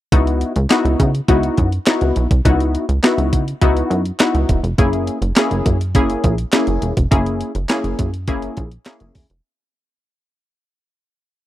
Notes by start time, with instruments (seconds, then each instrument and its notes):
0.12 analog synth bass C#2, analog polysynth B3 D#4 E4 F#4, kick, closed hi-hat
0.27 closed hi-hat
0.41 closed hi-hat
0.56 analog synth bass C#2, closed hi-hat
0.70 analog polysynth B3 D#4 E4 F#4, snare, clap, closed hi-hat
0.85 analog synth bass C#2, closed hi-hat
1.00 analog synth bass C#3, kick, closed hi-hat
1.15 closed hi-hat
1.28 analog synth bass C#2, analog polysynth B3 D#4 E4 F#4, kick, closed hi-hat
1.43 closed hi-hat
1.57 analog synth bass F#2, kick, closed hi-hat
1.72 closed hi-hat
1.86 analog polysynth B3 D#4 E4 F#4, snare, clap, closed hi-hat
2.01 analog synth bass C#2, closed hi-hat
2.16 analog synth bass B1, closed hi-hat
2.31 analog synth bass C2, kick, closed hi-hat
2.45 analog synth bass C#2, analog polysynth B3 D#4 E4 F#4, kick, closed hi-hat
2.60 closed hi-hat
2.75 closed hi-hat
2.89 analog synth bass C#2, closed hi-hat
3.03 analog polysynth B3 D#4 E4 F#4, snare, clap, closed hi-hat
3.18 analog synth bass C#2, closed hi-hat
3.33 analog synth bass C#3, kick, closed hi-hat
3.48 closed hi-hat
3.61 analog synth bass C#2, analog polysynth B3 D#4 E4 F#4, kick, closed hi-hat
3.77 closed hi-hat
3.90 analog synth bass F#2, closed hi-hat
4.05 closed hi-hat
4.20 analog polysynth B3 D#4 E4 F#4, snare, clap, closed hi-hat
4.35 analog synth bass C#2, closed hi-hat
4.49 analog synth bass E1, kick, closed hi-hat
4.63 analog synth bass F1, closed hi-hat
4.78 analog synth bass F#1, analog polysynth A#3 C#4 E4 G#4, kick, closed hi-hat
4.93 closed hi-hat
5.07 closed hi-hat
5.22 analog synth bass F#1, closed hi-hat
5.36 analog polysynth A#3 C#4 E4 G#4, snare, clap, closed hi-hat
5.51 analog synth bass F#1, closed hi-hat
5.66 analog synth bass F#2, kick, closed hi-hat
5.81 closed hi-hat
5.95 analog synth bass F#1, analog polysynth A#3 C#4 E4 G#4, kick, closed hi-hat
6.10 closed hi-hat
6.24 analog synth bass A#1, kick, closed hi-hat
6.38 closed hi-hat
6.53 analog polysynth A#3 C#4 E4 G#4, snare, clap, closed hi-hat
6.67 analog synth bass F#1, closed hi-hat
6.82 analog synth bass E1, closed hi-hat
6.97 analog synth bass F1, kick, closed hi-hat
7.11 analog synth bass F#1, analog polysynth A#3 C#4 E4 G#4, kick, closed hi-hat
7.26 closed hi-hat
7.41 closed hi-hat
7.55 analog synth bass F#1, closed hi-hat
7.69 analog polysynth A#3 C#4 E4 G#4, snare, clap, closed hi-hat
7.84 analog synth bass F#1, closed hi-hat
7.99 analog synth bass F#2, kick, closed hi-hat
8.14 closed hi-hat
8.28 analog synth bass F#1, analog polysynth A#3 C#4 E4 G#4, kick, closed hi-hat
8.42 closed hi-hat
8.57 analog synth bass A#1, kick, closed hi-hat
8.71 closed hi-hat
8.86 analog polysynth A#3 C#4 E4 G#4, snare, clap, closed hi-hat
9.00 analog synth bass F#1, closed hi-hat
9.15 analog synth bass E1, kick, open hi-hat
9.30 analog synth bass F1, closed hi-hat